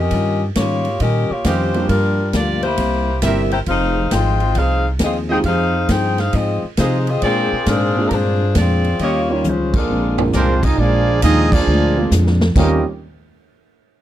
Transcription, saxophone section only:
0.00 0.42 C#4 loud
0.00 0.42 G4 medium
0.00 0.42 A#4 medium
0.00 0.42 D#5 loud
0.57 0.98 A#3 medium
0.57 0.98 F4 medium
0.57 0.98 G4 medium
0.57 0.98 C#5 medium
1.01 1.28 C#4 medium
1.01 1.28 G4 medium
1.01 1.29 A#4 medium
1.01 1.28 D#5 medium
1.32 1.45 A#3 medium
1.32 1.45 F4 medium
1.32 1.45 G4 medium
1.32 1.46 C#5 medium
1.46 1.87 A#3 medium
1.46 1.87 F4 medium
1.46 1.87 G4 medium
1.46 1.87 C5 medium
1.90 2.31 G3 medium
1.90 2.31 D4 medium
1.90 2.31 F4 medium
1.90 2.31 A#4 medium
2.35 2.63 A#3 medium
2.35 2.64 F4 medium
2.35 2.63 G4 medium
2.35 2.64 D5 medium
2.63 3.19 A#3 medium
2.63 3.19 E4 medium
2.63 3.19 G4 medium
2.63 3.19 C5 medium
3.23 3.53 C4 medium
3.23 3.52 G4 medium
3.23 3.51 A#4 medium
3.23 3.53 E5 medium
3.52 3.59 E4 medium
3.52 3.59 A#4 medium
3.52 3.59 C5 medium
3.52 3.58 G5 medium
3.68 4.09 D#4 medium
3.68 4.09 G#4 medium
3.68 4.09 C5 medium
3.68 4.09 F5 loud
4.13 4.57 F4 medium
4.13 4.56 C5 medium
4.13 4.57 D#5 medium
4.13 4.57 G5 loud
4.57 4.86 D#4 medium
4.57 4.86 G#4 medium
4.57 4.86 C5 medium
4.57 4.86 F5 medium
5.03 5.15 C4 medium
5.03 5.16 F4 medium
5.03 5.16 G#4 medium
5.03 5.16 D#5 medium
5.32 5.38 D#4 medium
5.32 5.38 G#4 medium
5.32 5.38 C5 medium
5.32 5.38 G5 loud
5.46 5.87 D#4 medium
5.46 5.87 G#4 medium
5.46 5.87 C5 medium
5.46 5.87 F5 loud
5.90 6.19 D#4 medium
5.90 6.18 G#4 medium
5.90 6.18 C5 medium
5.90 6.19 G5 loud
6.20 6.34 D#4 medium
6.20 6.34 G#4 medium
6.20 6.34 C5 medium
6.20 6.34 F5 medium
6.35 6.64 C4 medium
6.35 6.64 F4 medium
6.35 6.64 G#4 medium
6.35 6.64 D#5 medium
6.79 7.06 G#3 medium
6.79 7.06 D#4 medium
6.79 7.06 F4 medium
6.79 7.06 C5 medium
7.09 7.23 C4 medium
7.09 7.23 F4 medium
7.09 7.23 G#4 medium
7.09 7.23 D#5 medium
7.24 7.65 C4 loud
7.24 7.65 F4 medium
7.24 7.65 G#4 medium
7.24 7.64 D5 loud
7.68 8.07 D4 medium
7.68 8.07 G#4 medium
7.68 8.07 C5 medium
7.68 8.07 F5 medium
8.08 8.12 A#4 medium
8.13 8.57 D4 medium
8.13 8.57 F4 medium
8.13 8.57 G#4 medium
8.13 8.57 C5 medium
8.58 8.99 C4 medium
8.58 8.99 F4 medium
8.58 8.99 G#4 medium
8.58 8.98 D5 medium
9.02 9.31 A#3 medium
9.02 9.30 F4 medium
9.02 9.31 G4 medium
9.02 9.30 C#5 loud
9.31 9.45 A#3 medium
9.31 9.45 F4 medium
9.31 9.45 G4 medium
9.31 9.45 C#5 medium
9.47 9.75 G#3 medium
9.47 9.75 C#4 medium
9.47 9.75 F4 medium
9.47 9.75 C5 medium
9.76 10.30 G#3 medium
9.76 10.31 D4 medium
9.76 10.31 F4 medium
9.76 10.31 A#4 medium

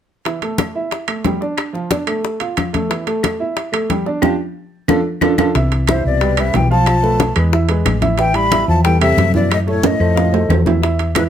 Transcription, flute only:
5.89 6.04 C5 medium
6.06 6.42 D5 medium
6.40 6.58 E5 medium
6.56 6.71 G5 medium
6.71 7.33 A5 medium
8.19 8.37 G5 medium
8.35 8.68 B5 medium
8.69 8.83 A5 medium
8.84 9.00 G5 medium
9.01 9.32 E5 medium
9.36 9.50 D5 medium
9.53 9.59 D#5 medium
9.69 9.88 C#5 medium
9.86 10.51 D#5 medium
11.17 11.23 B4 medium

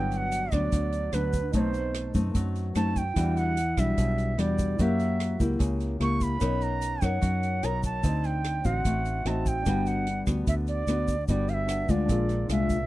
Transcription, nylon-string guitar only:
0.00 0.71 G2 medium
0.00 0.49 F#3 medium
0.00 0.49 B3 medium
0.00 0.49 D4 medium
0.52 1.10 F#3 medium
0.52 1.10 B3 medium
0.52 1.11 D4 medium
0.73 1.52 D3 medium
1.13 1.40 F#3 medium
1.13 1.40 B3 medium
1.13 1.40 D4 medium
1.54 2.33 B2 medium
1.54 2.12 A3 medium
1.54 2.12 C4 medium
1.54 2.12 D#4 medium
2.14 2.72 A3 medium
2.14 2.73 C4 medium
2.14 2.73 D#4 medium
2.35 3.14 F#3 medium
2.75 3.02 A3 medium
2.75 3.02 C4 medium
2.75 3.02 D#4 medium
3.16 3.96 E3 medium
3.16 3.57 G3 medium
3.16 3.57 D4 medium
3.16 3.57 F#4 medium
3.77 4.35 G3 medium
3.77 4.35 D4 soft
3.77 4.35 F#4 medium
3.98 4.77 B2 soft
4.38 4.75 G3 medium
4.38 4.76 D4 medium
4.38 4.76 F#4 medium
4.79 5.58 F#3 medium
4.79 5.37 A#3 medium
4.79 5.37 E4 medium
4.79 5.37 G4 medium
5.40 5.97 A#3 medium
5.40 5.98 E4 medium
5.40 5.98 G4 medium
5.59 6.39 C#3 medium
6.00 6.38 A#3 medium
6.00 6.38 E4 medium
6.00 6.38 G4 medium
6.41 7.20 B3 medium
6.41 6.99 D#4 soft
6.41 6.99 A#4 soft
6.41 6.99 C#5 medium
7.02 7.60 D#4 medium
7.02 7.60 A#4 medium
7.02 7.60 C#5 medium
7.21 8.01 F#3 medium
7.63 8.00 D#4 medium
7.63 8.00 A#4 medium
7.63 8.01 C#5 medium
8.03 8.82 D3 medium
8.03 8.61 C4 soft
8.03 8.61 D#4 medium
8.64 9.22 C4 medium
8.64 9.22 D#4 medium
8.64 9.22 F#4 medium
8.85 9.64 A3 soft
9.26 9.63 C4 medium
9.26 9.63 D#4 medium
9.26 9.64 F#4 medium
9.66 10.45 G3 medium
9.66 10.06 B3 medium
9.66 10.07 D4 soft
9.66 10.07 F#4 medium
10.27 10.85 B3 medium
10.27 10.85 D4 medium
10.27 10.85 F#4 medium
10.47 11.26 D3 soft
10.88 11.14 B3 medium
10.88 11.14 D4 medium
10.88 11.14 F#4 medium
11.29 12.07 G3 medium
11.29 11.86 B3 medium
11.29 11.86 D4 medium
11.29 11.86 F#4 medium
11.89 12.46 G#3 medium
11.89 12.47 D4 medium
11.89 12.47 F4 medium
12.09 12.87 A#2 medium
12.50 12.76 G#3 medium
12.50 12.76 D4 medium
12.50 12.76 F4 medium

